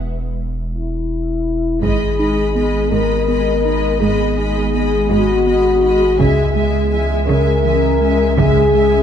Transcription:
Already playing: E1
0.74 E4
1.82 G#1 G#2 G#3 B3 G#4 D#5 B5, taiko
2.19 G#3 D#4 D#5 B5
2.55 G#3 B3 D#5 B5
2.91 G#2 G#3 A#4 D#5 B5
3.28 G#3 B3 D#5 B5
3.65 G#3 D#4 D#5 B5
4.00 G#2 G#3 G#4 D#5 B5
4.37 G#3 D#4 D#5 B5
4.74 G#3 B3 D#5 B5
5.09 G#2 G#3 F#4 D#5 B5
5.45 G#3 B3 D#5 B5
5.83 G#3 D#4 D#5 B5
6.18 C#2 C#3 G#3 C#4 G#4 E5 G#5, taiko
6.55 G#3 E5 G#5
6.91 E3 G#3 E5 G#5
7.27 C#3 G#3 A#4 E5 G#5
7.64 E3 G#3 E5 G#5
8.00 G#3 E5 G#5
8.37 C#3 G#3 G#4 E5 G#5, taiko
8.73 G#3 E5 G#5

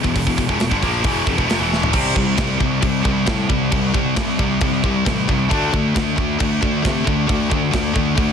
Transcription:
0.03 E1 E2 B2, kick
0.16 E1 E2 B2, kick, open hi-hat
0.26 E1 E2 B2, kick
0.37 E1 E2 B2, kick, open hi-hat
0.48 E1 E2 B2, kick
0.59 E1 E2 B2, snare, open hi-hat
0.71 G1 G2 D3, kick
0.82 A#1 A#2 F3 A#3, kick, open hi-hat
1.03 E1 E2 B2 E3, kick, open hi-hat
1.26 F1 F2 C3, kick, open hi-hat
1.38 E1 E2 B2, kick
1.49 F1 F2 C3, snare, open hi-hat
1.60 E1 E2 B2 E3
1.73 snare
1.83 floor tom
1.93 C2 C3 G3 C4, kick, crash
2.16 C2 C3 G3, kick
2.38 C2 C3 G3, kick, snare, crash
2.60 C2 C3 G3, kick
2.82 C2 C3 G3, kick, crash
3.04 C2 C3 G3, kick
3.26 A2 C3 G3, kick, snare, crash
3.49 C2 C3 G3, kick
3.72 C2 C3 G3, kick, crash
3.94 C2 C3 G3, kick
4.16 C2 C3 G3, kick, snare, crash
4.39 C2 C3 G3, kick
4.61 C2 C3 G3, kick, crash
4.84 C2 C3 G3, kick
5.05 A1 C3 G3, kick, snare, crash
5.28 C2 C3 G3, kick
5.49 D2 D3 A3 D4, kick, crash
5.54 A3
5.72 D2 D3 A3, kick
5.94 D2 D3 A3, kick, snare, crash
6.16 D2 D3 A3, kick
6.39 D2 D3 A3, kick, crash
6.61 D2 D3 A3, kick
6.82 C3 D3 A3, kick, snare, crash
7.05 D2 D3 A3, kick
7.27 D2 D3 A3, kick, crash
7.50 D2 D3 A3, kick
7.71 D2 D3 A3, kick, snare, crash
7.94 D2 D3 A3, kick
8.16 D2 D3 A3, kick, crash

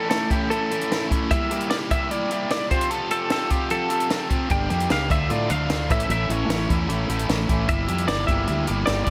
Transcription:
Already playing: E3 C#4 E4
0.10 A2 E3 A3 C#4 E4 A4, snare, closed hi-hat
0.30 A2 E3 A3 C#4 E4 G4, kick, closed hi-hat
0.50 A2 E3 A3 C#4 E4 A4, closed hi-hat
0.71 A2 E3 A3 C#4 E4, closed hi-hat
0.81 closed hi-hat
0.91 A2 E3 A3 C#4 E4, snare, closed hi-hat
1.11 A2 E3 A3 C#4 E4, kick, closed hi-hat
1.31 G3 A#3 E4 G4 E5, kick, closed hi-hat
1.51 G3 A#3 E4 G4, closed hi-hat
1.60 closed hi-hat
1.70 G3 A#3 E4 G4 D5, snare, closed hi-hat
1.91 G3 A#3 E4 G4 E5, kick, closed hi-hat
2.10 G3 A#3 E4 G4 D5, closed hi-hat
2.31 G3 A#3 E4 G4, closed hi-hat
2.50 G3 A#3 E4 G4 D5, snare, closed hi-hat
2.70 F3 C4 F4 G4 C5, kick, closed hi-hat
2.81 closed hi-hat
2.90 F3 C4 F4 G4 A4, closed hi-hat
3.11 F3 C4 F4 G4 A4, closed hi-hat
3.30 F3 C4 F4 G4 A4, snare, closed hi-hat
3.50 F3 C4 F4 G4, kick, closed hi-hat
3.70 F3 C4 F4 G4 A4, closed hi-hat
3.90 F3 C4 F4 G4, closed hi-hat
4.00 closed hi-hat
4.10 F3 C4 F4 G4, snare, closed hi-hat
4.30 F3 C4 F4 G4, kick, closed hi-hat
4.50 G1 G3 A#3 D4 G4 G5, kick, closed hi-hat
4.69 F2 G3 A#3 D4 G4, closed hi-hat
4.80 closed hi-hat
4.89 C#2 G3 A#3 D4 G4 F5, snare, closed hi-hat
5.09 D2 D3 A3 D4 F4 E5, kick, closed hi-hat
5.30 A2 D3 A3 D4 F4 D5, closed hi-hat
5.50 D2 D3 A3 D4 F4 F5, closed hi-hat
5.70 D2 D3 A3 D4 F4, snare, closed hi-hat
5.89 A1 A2 E3 A3 C#4 E4 E5, kick, closed hi-hat
6.00 closed hi-hat
6.09 A1 A2 E3 A3 C#4 E4 E5, closed hi-hat
6.29 A1 A2 E3 A3 C#4 E4 C#5, closed hi-hat
6.48 A1 A2 E3 A3 C#4 E4, snare, closed hi-hat
6.69 E2 A2 E3 A3 C#4 E4, kick, closed hi-hat
6.88 A1 A2 E3 A3 C#4 E4, closed hi-hat
7.09 A1 A2 E3 A3 C#4 E4, closed hi-hat
7.19 closed hi-hat
7.29 A1 A2 E3 A3 C#4 E4, snare, closed hi-hat
7.48 A1 A2 E3 A3 C#4 E4, kick, closed hi-hat
7.69 G1 G3 A#3 E4 G4 E5, kick, closed hi-hat
7.88 F2 G3 A#3 E4 G4, closed hi-hat
7.98 closed hi-hat
8.08 G1 G3 A#3 E4 G4 D5, snare, closed hi-hat
8.27 G1 G3 A#3 E4 G4 E5, kick, closed hi-hat
8.47 D2 G3 A#3 E4 G4, closed hi-hat
8.67 G1 G3 A#3 E4 G4, closed hi-hat
8.86 G1 G3 A#3 E4 G4 D5, snare, closed hi-hat
9.04 D5, kick, closed hi-hat

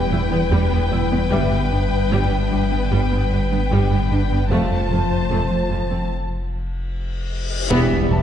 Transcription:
Already playing: E1 G3 B3 E4 B4 G5
0.11 E1 E2 E4
0.31 E2 E3 B3
0.51 E1 E2 G3
0.71 E2 B3
0.91 E1 E2 E4
1.11 E2 B3
1.30 G1 G2 G3 B3 D4 G4 E5
1.52 G2
1.71 G1 G2 D4
1.92 G2
2.11 G1 G2 G3
2.32 G3
2.51 G1 G2 G3 D4
2.71 G2 G3 B3
2.91 G1 G2 G3 B3 G4
3.12 G2 B3
3.31 G1 G2 D4
3.52 G2 G3 B3
3.71 G1 G2 G3
3.91 G2 B3
4.11 G1 G2 D4
4.32 G2 B3
4.50 F1 F2 F3 A3 C4 F4 A4 C5 F5 A5, reverse cymbal
4.71 F2
4.91 F1 F2 F4
5.11 F2
5.31 F1 F2 A3
5.51 F3
5.71 F1 F2 F3 F4
5.91 F2 F3 C4
7.70 E1 E2 E3 G3 B3 E4 G4 E5, impact
7.92 E2
8.11 E1 E2 B3 G4 A5

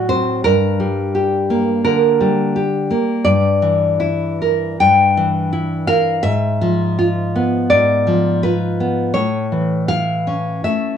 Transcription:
Already playing: A2 F#3 F#4
0.09 C4 C5
0.44 G2 A#4
0.80 G3
1.15 G4
1.50 A#3
1.85 D3 A#4
2.21 G3
2.56 G4
2.91 A#3
3.24 G2 D5
3.62 E3
4.00 E4
4.42 A#4
4.80 G2 G5
5.17 E3
5.53 E4
5.87 A#4 F5
6.23 G#2 E5
6.62 F3
6.99 F4
7.35 B3
7.70 G#2 D5
8.07 F3
8.43 F4 B4
8.80 B3
9.14 A2 C#5
9.52 E3
9.88 E4 F5
10.27 C#4
10.64 A3 E5

